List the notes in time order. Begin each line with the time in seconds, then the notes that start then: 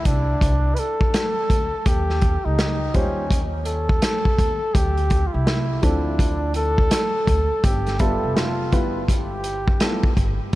0.05 C2 D4, kick, closed hi-hat
0.41 C2, kick, closed hi-hat
0.75 B4, closed hi-hat
0.79 A4
1.01 kick
1.14 snare, closed hi-hat
1.50 D2, kick, closed hi-hat
1.86 D#2 G4, kick, closed hi-hat
2.10 snare
2.21 kick, closed hi-hat
2.45 C#2 D#4
2.59 snare, closed hi-hat
2.94 D#2 G3 C#4 D#4 F4 C5, kick, closed hi-hat
3.31 kick, closed hi-hat
3.65 A4, closed hi-hat
3.89 kick
4.02 snare, closed hi-hat
4.25 kick
4.38 D#2, kick, closed hi-hat
4.74 D2 G4, kick, closed hi-hat
4.97 closed hi-hat
5.10 kick, closed hi-hat
5.27 F4
5.33 C2 E4
5.47 snare, closed hi-hat
5.82 D2 F3 C4 D4 E4 A4, kick, closed hi-hat
6.19 kick, closed hi-hat
6.54 A4, closed hi-hat
6.78 kick
6.91 snare, closed hi-hat
7.27 D2, kick, closed hi-hat
7.64 G1 G4, kick, closed hi-hat
7.86 snare, closed hi-hat
7.99 G3 B3 F4 A4 E5, kick, closed hi-hat
8.23 F1
8.37 F4, snare, closed hi-hat
8.72 G1 G3 B3 E4 F4 B4, kick, closed hi-hat
9.08 G4, kick, closed hi-hat
9.44 closed hi-hat
9.68 kick
9.80 G3 B3 E4 F4 A4, snare, closed hi-hat
10.04 kick
10.17 G1, kick, closed hi-hat